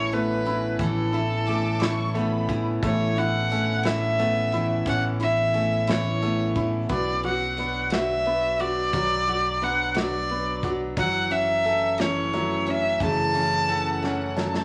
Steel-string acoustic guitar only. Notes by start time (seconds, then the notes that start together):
Already playing: E3 C#4
0.13 B3
0.46 E3
0.81 E3
1.14 E3
1.48 C#4
1.82 E3
2.15 B3
2.49 E3
2.84 E3
3.18 E3
3.52 C#4
3.86 E3
4.19 B3
4.54 E3
4.87 E3
5.20 E3
5.54 C#4
5.88 E3
6.23 B3
6.56 E3
6.89 F#3
7.24 F#3
7.58 D4
7.92 F#3
8.60 F#3
8.94 F#3
9.28 F#3
9.62 D4
9.95 F#3
10.64 F#3
10.97 E3
11.31 E3
11.66 C#4
12.00 E3
12.34 A3
12.67 E3
13.01 E3
13.35 E3
13.69 C#4
14.03 E3
14.37 A3